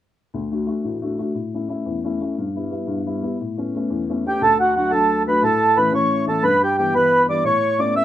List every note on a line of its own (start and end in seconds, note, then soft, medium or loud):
0.34 0.67 D2 medium
0.52 0.65 A3 soft
0.52 0.66 D4 soft
0.52 0.67 F#4 soft
0.67 0.94 A3 soft
0.67 0.95 D4 soft
0.67 0.96 F#4 soft
0.84 1.17 A1 soft
1.02 1.17 A3 soft
1.02 1.17 D4 soft
1.02 1.18 F#4 soft
1.18 1.31 A3 soft
1.18 1.32 D4 soft
1.18 1.32 F#4 soft
1.35 1.68 A2 medium
1.54 1.67 A3 soft
1.54 1.68 C#4 soft
1.54 1.68 E4 soft
1.69 1.96 A3 soft
1.69 1.97 C#4 soft
1.69 1.97 E4 soft
1.86 2.19 E2 soft
2.04 2.19 A3 soft
2.04 2.20 C#4 soft
2.04 2.20 E4 soft
2.21 2.33 A3 soft
2.21 2.34 C#4 soft
2.21 2.34 E4 soft
2.38 2.71 G2 medium
2.55 2.69 G3 soft
2.55 2.70 B3 soft
2.55 2.70 E4 soft
2.71 2.98 G3 soft
2.71 2.99 B3 soft
2.71 2.99 E4 soft
2.87 3.20 G2 medium
3.05 3.22 G3 soft
3.05 3.22 B3 soft
3.05 3.22 E4 soft
3.23 3.35 G3 soft
3.23 3.35 B3 soft
3.23 3.36 E4 soft
3.41 3.73 A2 medium
3.57 3.73 A3 soft
3.57 3.74 B3 soft
3.57 3.75 C#4 soft
3.75 4.01 A3 soft
3.75 4.02 B3 soft
3.75 4.02 C#4 soft
3.90 4.23 E2 medium
4.10 4.24 A3 soft
4.10 4.25 B3 soft
4.10 4.25 C#4 soft
4.25 4.37 A3 soft
4.25 4.38 B3 soft
4.25 4.38 C#4 soft
4.25 4.42 G4 medium
4.41 5.39 D2 medium
4.41 4.58 A4 medium
4.60 4.75 F#4 medium
4.76 4.91 F#3 soft
4.76 4.91 A3 soft
4.76 4.92 D4 soft
4.76 4.92 F#4 medium
4.91 5.25 F#3 soft
4.91 5.25 A3 soft
4.91 5.25 D4 soft
4.91 5.23 A4 medium
5.27 5.42 F#3 soft
5.27 5.42 A3 soft
5.27 5.42 D4 soft
5.27 5.43 B4 medium
5.42 6.40 A2 medium
5.42 5.78 A4 medium
5.77 5.90 E3 soft
5.77 5.90 A3 soft
5.77 5.91 C#4 soft
5.77 5.93 B4 medium
5.92 6.25 E3 soft
5.92 6.25 A3 soft
5.92 6.25 C#4 soft
5.92 6.25 C#5 medium
6.27 6.42 E3 soft
6.27 6.43 A3 soft
6.27 6.43 C#4 medium
6.27 6.44 A4 medium
6.43 7.41 G2 medium
6.43 6.62 B4 loud
6.63 6.77 G4 medium
6.78 6.92 E3 soft
6.78 6.93 G3 soft
6.78 6.92 B3 soft
6.78 6.94 G4 medium
6.94 7.27 E3 soft
6.94 7.27 G3 soft
6.94 7.27 B3 soft
6.94 7.26 B4 loud
7.28 7.44 E3 soft
7.28 7.44 G3 soft
7.28 7.44 B3 soft
7.28 7.44 D5 medium
7.44 8.05 A2 medium
7.44 7.80 C#5 loud
7.78 7.94 A3 soft
7.78 7.94 B3 soft
7.78 7.94 C#4 medium
7.78 7.94 D5 medium
7.95 8.05 A3 soft
7.95 8.05 B3 soft
7.95 8.05 C#4 soft
7.95 8.05 E5 loud